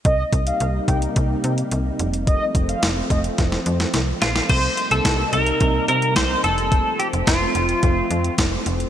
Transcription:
<<
  \new Staff \with { instrumentName = "Analog polysynth" } { \time 4/4 \key c \dorian \tempo 4 = 108 ees''8 r16 f''8 r16 g''16 r2 r16 | ees''8 r16 f''8 r16 ees''16 r2 r16 | r1 | r1 | }
  \new Staff \with { instrumentName = "Clean electric guitar" } { \time 4/4 \key c \dorian r1 | r2. r8 f'8 | c''8. a'8. bes'4 bes'8 c''8 a'8~ | a'8 g'8 f'2 r4 | }
  \new Staff \with { instrumentName = "String machine" } { \time 4/4 \key c \dorian <c g bes ees'>2.~ <c g bes ees'>8 <f a c'>8~ | <f a c'>1 | <c g bes ees'>2.~ <c g bes ees'>8 <f a c'>8~ | <f a c'>1 | }
  \new Staff \with { instrumentName = "FM bass" } { \clef bass \time 4/4 \key c \dorian c,8 c,8 c,8 c,8 c,8 c8 c,8 f,,8~ | f,,8 f,,8 f,,8 f,,8 f,,8 f,8 c,8 bes,,8 | c,8 r16 c,16 c,8 c,8 c,8 c8 c,8 f,,8~ | f,,8 r16 f,,16 f,,8 f,,8 f,,8 f,8 f,,8 f,,8 | }
  \new DrumStaff \with { instrumentName = "Drums" } \drummode { \time 4/4 <hh bd>8 <hh bd>16 hh16 hh8 <hh bd>16 hh16 <hh bd>8 hh16 hh16 hh8 hh16 hh16 | <hh bd>8 <hh bd>16 hh16 <hh sn>8 <hh bd>16 hh16 <hh bd sn>16 sn16 hh16 <hh sn>16 <hh sn>8 <hh sn>16 <hh sn>16 | <cymc hh bd>8 hh16 hh16 <hh bd sn>8 hh16 hh16 <hh bd>8 hh16 hh16 <hh bd sn>8 hh16 hh16 | <hh bd>8 hh16 hh16 <hh bd sn>8 hh16 hh16 <hh bd>8 hh16 hh16 <hh bd sn>8 hh16 hh16 | }
>>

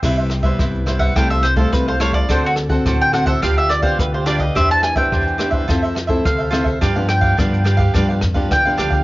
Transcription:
<<
  \new Staff \with { instrumentName = "Mandolin" } { \time 4/4 \key c \major \tempo 4 = 106 r4. r16 fis''16 g''16 e''16 c''16 a'16 b'16 c''16 des''16 d''16 | c''16 fis'16 r8. g''16 fis''16 e''16 f''16 e''16 d''16 c''16 b'16 c''16 d''16 ees''16 | e''16 a''16 aes''16 g''4 r4 r16 f''4~ | f''8 g''8 r2 g''4 | }
  \new Staff \with { instrumentName = "Cavaquinho" } { \time 4/4 \key c \major <e' b' c'' e''>16 <b' c'' e''>16 r16 <b' c'' e''>16 <e' b' c'' e''>8 <e' b' c'' e''>16 <b' c'' e''>16 <e' a' c'' f''>16 <a' c'' f''>16 r16 <a' c'' f''>8 <a' c'' f''>16 <e' a' c'' f''>16 <a' c'' f''>16 | <d' a' c'' fis''>16 <a' c'' fis''>16 r16 <a' c'' fis''>16 <d' a' c'' fis''>8 <d' a' c'' fis''>16 <a' c'' fis''>16 <d' g' b' f''>16 <g' b' f''>16 r16 <g' b' f''>8 <g' b' f''>16 <d' g' b' f''>16 <g' b' f''>16 | <g' b' c'' e''>16 <b' c'' e''>16 r16 <b' c'' e''>16 <g' b' c'' e''>8 <g' b' c'' e''>16 <b' c'' e''>16 <f' a' c'' e''>16 <a' c'' e''>16 r16 <a' c'' e''>8 <a' c'' e''>16 <f' a' c'' e''>16 <a' c'' e''>16 | <d' g' b' f''>16 <g' b' f''>16 r16 <g' b' f''>16 <d' g' b' f''>8 <d' g' b' f''>16 <g' b' f''>16 <d' g' b' f''>16 <g' b' f''>16 r16 <g' b' f''>8 <g' b' f''>16 <d' g' b' f''>16 <g' b' f''>16 | }
  \new Staff \with { instrumentName = "Nylon-string guitar" } { \time 4/4 \key c \major << { <g b e'>8. <g b e'>8. <g b e'>8 <g a e'>8 r16 <g a e'>8. <g a e'>8 | <c' fis' a'>8. <c' fis' a'>8. <c' fis' a'>8 <b f' g'>8. <b f' g'>8. <b f' g'>16 r16 | <b d' g'>8. <b d' g'>8. <b d' g'>8 <c' e' a'>8 r16 <c' e' a'>8. <c' e' a'>8 | <f b d'>16 <f b d'>8. <f b d'>8 <f b d'>16 r16 <f b d'>8 r16 <f b d'>8 <f b d'>8. | } \\ { c4 g,4 c4 c4 | d4 a,4 d4 d4 | e4 e4 f4 c4 | g,4 d4 g,4 d4 | } >> }
  \new Staff \with { instrumentName = "Upright bass" } { \clef bass \time 4/4 \key c \major c,4 c,4 c,4 c,4 | d,4 d,4 d,4 d,4 | e,4 e,4 f,4 d,4 | g,4 g,4 g,8 f,8 e,8 d,8 | }
  \new DrumStaff \with { instrumentName = "Drums" } \drummode { \time 4/4 <cymc bd ss>8 <hh ss>16 bd16 <hh bd ss>16 hh16 <hh ss>16 <hh bd>16 <hh bd ss>16 hh16 <hh ss>16 <hh bd>16 <hh bd ss>8 <hh ss>16 bd16 | <hh bd ss>8 <hh ss>16 bd16 <hh bd ss>16 hh16 <hh ss>16 <hh bd>16 <hh bd ss>16 hh16 <hh ss>16 bd16 <hh bd ss>8 <hh ss>16 <hh bd>16 | <hh bd ss>8 <hh ss>16 bd16 <hh bd ss>16 hh16 <hh ss>16 <hh bd>16 <hh bd ss>16 hh16 <hh ss>16 <hh bd>16 <hh bd ss>8 <hh ss>16 bd16 | <hh bd ss>8 <hh ss>16 bd16 <hh bd ss>16 hh16 <hh ss>16 <hh bd>16 <hh bd ss>16 hh16 <hh ss>16 bd16 <hh bd ss>8 <hh ss>16 <hh bd>16 | }
>>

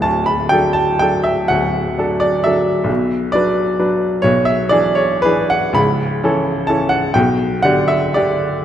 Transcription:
<<
  \new Staff \with { instrumentName = "Grand piano" } { \time 6/8 \key d \major \tempo 4. = 42 a''16 b''16 g''16 a''16 g''16 e''16 fis''8. d''16 e''8~ | e''8 d''4 cis''16 e''16 d''16 cis''16 b'16 fis''16 | b''4 a''16 fis''16 g''8 fis''16 e''16 d''8 | }
  \new Staff \with { instrumentName = "Grand piano" } { \time 6/8 \key d \major <d,, d,>8 <fis d' a'>8 <fis d' a'>8 <d,, d,>8 <fis d' a'>8 <fis d' a'>8 | <b,, b,>8 <fis d' b'>8 <fis d' b'>8 <b,, b,>8 <e d' gis'>8 <e d' gis'>8 | <cis,, cis,>8 <e cis' a'>8 <e cis' a'>8 <b,, b,>8 <d d' g'>8 <d d' g'>8 | }
>>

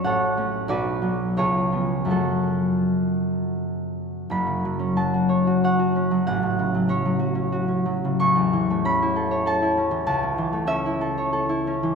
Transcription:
<<
  \new Staff \with { instrumentName = "Harp" } { \time 3/4 \key fis \minor \tempo 4 = 93 << { <fis'' a''>4 d''4 cis''4 | a'2. | b''4 a''4 fis''4 | fis''4 cis''2 |
cis'''4 b''4 a''4 | a''4 e''2 | } \\ { <fis' a' cis''>4 <fis' b'>4 <eis' gis'>4 | <cis' fis'>2.~ | <cis' fis'>2.~ | <cis' fis'>2. |
r2. | r2. | } >> }
  \new Staff \with { instrumentName = "Harp" } { \time 3/4 \key fis \minor <a,, fis cis'>8 <a cis'>8 b,,8 <fis b>8 cis,8 <eis b>8 | <fis, cis fis a>2. | <fis,, fis,>16 cis16 fis16 cis'16 fis16 fis'16 cis''16 fis'16 cis''16 fis'16 cis'16 fis16 | a,,16 a,16 cis16 fis16 cis'16 fis16 fis'16 cis'16 fis'16 cis'16 fis16 cis16 |
a,,16 e,16 e16 a16 cis'16 e'16 a'16 cis''16 a'16 e'16 cis'16 e16 | cis,16 cis16 e16 a16 cis'16 e'16 a'16 cis''16 a'16 e'16 cis'16 e16 | }
>>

